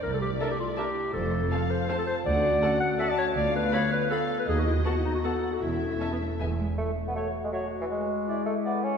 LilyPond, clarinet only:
\new Staff \with { instrumentName = "Clarinet" } { \time 3/4 \key f \major \tempo 4 = 161 bes'16 a'16 g'8 a'16 g'16 f'8 g'4 | a'4. c''8 c''16 a'16 c''8 | \key a \major d''4. fis''8 e''16 d''16 cis''8 | d''8 b'8 cis''8 b'8 a'8. b'16 |
gis'16 fis'16 e'8 fis'16 e'16 dis'16 fis'16 a'8. fis'16 | e'2 r4 | r4 fis'2~ | fis'4 e'2 | }